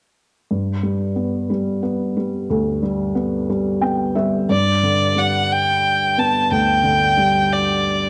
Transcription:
0.51 G2
0.83 G3
1.16 B3
1.50 G3
1.83 B3
2.17 G3
2.50 D2
2.83 G3
3.15 B3
3.50 G3
3.81 B3 G5
4.15 G3 E5
4.49 G2 D5
4.83 D3
5.16 G3 F#5
5.53 G5
6.18 B3 A5
6.51 D2 G5
6.83 D3
7.17 G3
7.53 D5

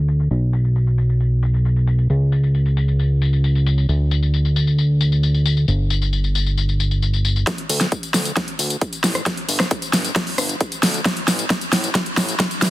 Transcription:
Already playing: D2
0.08 tambourine
0.20 tambourine
0.31 B1, tambourine
0.53 tambourine
0.64 tambourine
0.76 tambourine
0.87 tambourine
0.98 tambourine
1.09 tambourine
1.20 tambourine
1.43 tambourine
1.54 tambourine
1.65 tambourine
1.76 tambourine
1.87 tambourine
1.99 tambourine
2.10 C#2, tambourine
2.32 tambourine
2.43 tambourine
2.55 tambourine
2.66 tambourine
2.77 tambourine
2.88 tambourine
2.99 tambourine
3.22 tambourine
3.33 tambourine
3.44 tambourine
3.55 tambourine
3.66 tambourine
3.78 tambourine
3.89 D2, tambourine
4.11 tambourine
4.23 tambourine
4.34 tambourine
4.45 tambourine
4.56 tambourine
4.67 tambourine
4.78 tambourine
5.01 tambourine
5.12 tambourine
5.23 tambourine
5.34 tambourine
5.46 tambourine
5.57 tambourine
5.68 G1, tambourine
5.90 tambourine
6.02 tambourine
6.13 tambourine
6.24 tambourine
6.35 tambourine
6.46 tambourine
6.58 tambourine
6.69 tambourine
6.80 tambourine
6.91 tambourine
7.02 tambourine
7.14 tambourine
7.25 tambourine
7.36 tambourine
7.47 kick, snare, closed hi-hat, tambourine
7.58 closed hi-hat
7.70 D2, open hi-hat, tambourine
7.81 snare, closed hi-hat, tambourine
7.92 kick, closed hi-hat, tambourine
8.03 closed hi-hat, tambourine
8.14 D2, snare, open hi-hat, tambourine
8.25 closed hi-hat, tambourine
8.37 kick, snare, closed hi-hat, tambourine
8.48 closed hi-hat
8.59 D2, open hi-hat, tambourine
8.70 closed hi-hat, tambourine
8.81 kick, closed hi-hat, tambourine
8.93 closed hi-hat, tambourine
9.04 A1, snare, open hi-hat, tambourine
9.15 cross-stick, closed hi-hat, tambourine
9.26 kick, snare, closed hi-hat, tambourine
9.37 closed hi-hat
9.49 G1, open hi-hat, tambourine
9.60 cross-stick, snare, closed hi-hat, tambourine
9.71 kick, closed hi-hat, tambourine
9.82 closed hi-hat, tambourine
9.93 G1, snare, open hi-hat, tambourine
10.05 closed hi-hat, tambourine
10.16 kick, snare, closed hi-hat, tambourine
10.27 open hi-hat
10.38 G1, cross-stick, open hi-hat, tambourine
10.49 closed hi-hat, tambourine
10.61 kick, closed hi-hat, tambourine
10.72 closed hi-hat, tambourine
10.83 D2, snare, open hi-hat, tambourine
10.94 closed hi-hat, tambourine
11.05 kick, snare, closed hi-hat, tambourine
11.17 closed hi-hat
11.28 A1, snare, open hi-hat, tambourine
11.39 closed hi-hat, tambourine
11.50 kick, snare, closed hi-hat, tambourine
11.61 closed hi-hat, tambourine
11.73 A1, snare, open hi-hat, tambourine
11.84 closed hi-hat, tambourine
11.95 kick, snare, closed hi-hat, tambourine
12.06 closed hi-hat
12.17 A1, snare, open hi-hat, tambourine
12.29 closed hi-hat, tambourine
12.40 kick, snare, closed hi-hat, tambourine
12.51 closed hi-hat, tambourine
12.62 E2, snare, open hi-hat, tambourine

